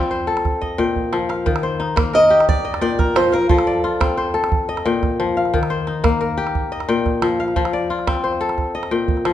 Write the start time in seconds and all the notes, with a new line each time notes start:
Already playing: F3 C4 F4 D5 F5
0.03 calabash click
0.11 C5
0.27 A4
0.37 calabash click
0.45 calabash thump, calabash click
0.61 D#5, calabash thump
0.78 A#2 G5, calabash thump
0.96 calabash thump
1.12 F3, calabash click
1.29 F5, calabash click
1.46 D#3, calabash thump
1.56 calabash click
1.63 C5
1.80 D#4, calabash click
1.96 A#3, calabash thump, calabash click
2.13 A#4 D#5, calabash click
2.30 G4
2.40 calabash click
2.49 D5, calabash thump
2.65 D#5
2.74 calabash click
2.81 A#2 D5 G5
2.99 A#4, calabash thump, calabash click
3.16 F3 C5, calabash click
3.32 A#4 F5
3.42 calabash click
3.49 F3 A4, calabash thump
3.59 calabash click
3.67 D5
3.84 F4, calabash click
4.00 C4, calabash thump, calabash click
4.17 C5, calabash click
4.34 A4
4.44 calabash click
4.52 calabash thump
4.69 D#5
4.77 calabash click
4.85 A#2 G5
5.03 calabash thump, calabash click
5.20 F3
5.37 F5
5.45 calabash click
5.54 D#3, calabash thump
5.63 calabash click
5.70 C5
5.87 D#4, calabash click
6.04 A#3, calabash thump, calabash click
6.21 A#4, calabash click
6.38 G4
6.47 calabash click
6.55 calabash thump
6.72 D#5
6.80 calabash click
6.89 A#2 G5
7.06 calabash thump, calabash click
7.22 F3, calabash click
7.40 F5
7.48 calabash click
7.56 F3, calabash thump, calabash click
7.65 calabash click
7.73 D5, calabash click
7.90 F4
7.99 calabash click
8.07 C4, calabash thump, calabash click
8.16 calabash click
8.24 C5, calabash click
8.33 calabash click
8.41 A4
8.49 calabash click
8.58 calabash thump, calabash click
8.75 D#5
8.83 calabash click
8.91 A#2 G5
9.08 calabash thump
9.17 calabash click
9.25 F3, calabash click